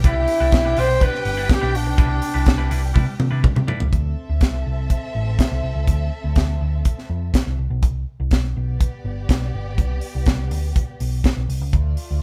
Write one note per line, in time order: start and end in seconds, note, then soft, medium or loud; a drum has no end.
0.00 3.89 C3 medium
0.00 3.89 B3 medium
0.00 3.89 D4 medium
0.00 3.64 G4 medium
0.00 3.88 G4 medium
0.00 3.64 G5 loud
0.04 0.25 C2 loud
0.04 0.23 G3 medium
0.04 0.16 D4 medium
0.04 0.16 E4 loud
0.04 0.81 E4 loud
0.04 0.15 B4 loud
0.04 kick loud
0.04 closed hi-hat medium
0.16 muted clean electric guitar stroke medium
0.28 muted clean electric guitar stroke soft
0.28 open hi-hat medium
0.40 0.51 C2 loud
0.40 0.51 G3 medium
0.40 0.52 D4 medium
0.40 0.52 E4 medium
0.40 0.52 B4 medium
0.52 0.73 B1 medium
0.52 muted clean electric guitar stroke soft
0.52 kick loud
0.52 snare loud
0.52 closed hi-hat medium
0.65 0.76 G3 medium
0.65 0.76 D4 medium
0.65 0.77 E4 medium
0.65 0.77 B4 medium
0.76 0.98 B1 medium
0.76 0.96 G3 medium
0.76 0.89 D4 medium
0.76 0.89 E4 loud
0.76 0.89 B4 medium
0.76 1.05 C5 loud
0.76 open hi-hat medium
0.90 muted clean electric guitar stroke soft
1.01 1.20 G3 medium
1.01 1.14 D4 medium
1.01 1.13 E4 loud
1.01 1.12 B4 loud
1.01 1.55 B4 loud
1.01 kick loud
1.01 closed hi-hat medium
1.14 muted clean electric guitar stroke soft
1.14 snare soft
1.25 1.46 G1 loud
1.25 muted clean electric guitar stroke soft
1.25 open hi-hat medium
1.37 1.48 G3 medium
1.37 1.49 D4 medium
1.37 1.49 E4 medium
1.37 1.49 B4 medium
1.49 kick loud
1.49 snare loud
1.49 closed hi-hat medium
1.54 1.78 G4 loud
1.61 1.74 B1 medium
1.61 1.72 G3 medium
1.61 1.73 D4 medium
1.61 1.73 E4 medium
1.61 1.74 B4 medium
1.74 1.86 A#1 medium
1.74 3.21 D4 loud
1.74 muted clean electric guitar stroke soft
1.74 open hi-hat medium
1.86 1.97 B1 loud
1.86 muted clean electric guitar stroke medium
1.98 2.19 C2 loud
1.98 2.17 G3 medium
1.98 2.10 D4 loud
1.98 2.10 E4 loud
1.98 2.09 B4 loud
1.98 kick loud
1.98 closed hi-hat medium
2.10 muted clean electric guitar stroke soft
2.22 muted clean electric guitar stroke soft
2.22 open hi-hat medium
2.34 2.45 C2 loud
2.34 2.45 G3 soft
2.34 2.46 D4 medium
2.34 2.46 E4 medium
2.34 2.46 B4 medium
2.46 2.67 C2 medium
2.46 muted clean electric guitar stroke soft
2.46 kick loud
2.46 snare loud
2.46 closed hi-hat medium
2.58 2.69 G3 medium
2.58 2.70 D4 medium
2.58 2.70 E4 medium
2.58 2.70 B4 medium
2.70 2.92 C2 loud
2.70 2.89 G3 medium
2.70 2.82 D4 medium
2.70 2.82 E4 medium
2.70 2.81 B4 medium
2.70 open hi-hat medium
2.82 muted clean electric guitar stroke medium
2.94 3.06 C3 loud
2.94 3.13 G3 medium
2.94 3.06 D4 medium
2.94 3.06 E4 medium
2.94 3.05 B4 medium
2.94 kick loud
2.94 high tom medium
3.06 muted clean electric guitar stroke soft
3.19 3.30 C3 loud
3.19 muted clean electric guitar stroke soft
3.19 mid tom medium
3.31 3.42 C3 loud
3.31 3.41 G3 medium
3.31 3.42 D4 medium
3.31 3.42 E4 medium
3.31 3.42 B4 medium
3.42 muted clean electric guitar stroke soft
3.42 kick loud
3.42 mid tom loud
3.56 3.66 C3 medium
3.56 muted clean electric guitar stroke soft
3.56 mid tom medium
3.68 3.87 G3 medium
3.68 3.80 D4 medium
3.68 3.79 E4 medium
3.68 3.79 B4 medium
3.68 floor tom loud
3.80 3.91 C#2 medium
3.80 muted clean electric guitar stroke soft
3.80 floor tom loud
3.92 4.13 D2 medium
3.92 7.54 C4 medium
3.92 7.54 A4 medium
3.92 7.54 E5 medium
3.92 kick loud
3.92 closed hi-hat medium
4.29 4.41 D2 medium
4.41 4.62 C2 medium
4.41 kick medium
4.41 snare medium
4.41 closed hi-hat medium
4.66 4.87 C2 medium
4.90 kick medium
4.90 closed hi-hat medium
5.15 5.35 A1 medium
5.39 kick loud
5.39 snare loud
5.39 closed hi-hat medium
5.52 5.62 C2 medium
5.63 5.73 C2 medium
5.75 5.86 C#2 medium
5.87 6.08 D2 medium
5.87 kick medium
5.87 closed hi-hat medium
6.24 6.34 D2 medium
6.36 6.57 D2 medium
6.36 kick loud
6.36 snare medium
6.36 closed hi-hat soft
6.61 6.81 D2 medium
6.85 kick medium
6.85 closed hi-hat medium
6.99 snare soft
7.10 7.30 F2 medium
7.34 kick loud
7.34 snare loud
7.34 closed hi-hat medium
7.46 7.57 C2 medium
7.58 7.69 C2 medium
7.70 7.83 B1 medium
7.83 8.03 C2 medium
7.83 kick loud
7.83 closed hi-hat medium
8.20 8.32 C2 medium
8.31 8.52 B1 medium
8.31 kick loud
8.31 snare loud
8.31 closed hi-hat soft
8.55 8.77 B1 medium
8.55 11.45 B3 medium
8.55 11.45 G4 medium
8.55 11.44 D5 medium
8.80 kick medium
8.80 closed hi-hat medium
9.04 9.25 G1 medium
9.29 9.50 B1 medium
9.29 kick loud
9.29 snare loud
9.29 closed hi-hat medium
9.54 9.78 G1 medium
9.78 9.99 C2 medium
9.78 kick loud
9.78 closed hi-hat medium
10.01 open hi-hat medium
10.15 10.25 C2 medium
10.26 10.51 C2 medium
10.26 kick loud
10.26 snare loud
10.26 closed hi-hat medium
10.51 10.72 D2 medium
10.51 open hi-hat medium
10.76 kick loud
10.76 closed hi-hat medium
11.00 11.21 B1 medium
11.00 open hi-hat medium
11.24 kick loud
11.24 snare loud
11.24 closed hi-hat medium
11.37 11.47 B1 medium
11.49 11.61 C2 medium
11.49 open hi-hat medium
11.61 11.71 C#2 medium
11.73 11.94 D2 loud
11.73 12.22 A3 medium
11.73 12.22 F4 medium
11.73 12.22 D5 medium
11.73 kick loud
11.73 closed hi-hat medium
11.97 open hi-hat medium
12.11 12.22 D2 medium